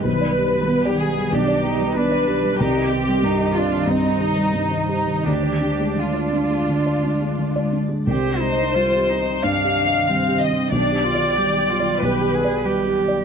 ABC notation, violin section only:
X:1
M:4/4
L:1/16
Q:1/4=93
K:Cm
V:1 name="Violin section"
=B4- B G A2 G4 B4 | G6 F2 E6 E2 | G4 F8- F2 z2 | c8 f6 e2 |
d8 =B6 z2 |]